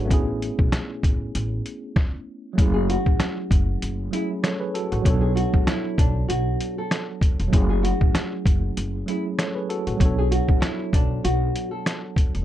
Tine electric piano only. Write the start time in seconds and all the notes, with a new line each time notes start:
Already playing: D4 F#4 G#4 A4 B4 C#5
0.05 A3 B3
0.09 C#4 E4
0.13 G#4
2.53 F#3 A3
2.57 C#4 E4
2.62 G#4
4.11 F#3 A3 C#4 E4
4.15 G#4
4.43 A4 C#5
4.60 G#4 B4
4.74 F#4 A4
4.92 F#4
5.02 F#3 B3
5.06 D4 A4 C#5
7.48 F#3 A3
7.52 C#4 E4
7.56 G#4
9.06 F#3 A3 C#4 E4
9.10 G#4
9.38 A4 C#5
9.55 G#4 B4
9.69 F#4 A4
9.87 F#4
9.97 F#3 B3
10.01 D4 A4 C#5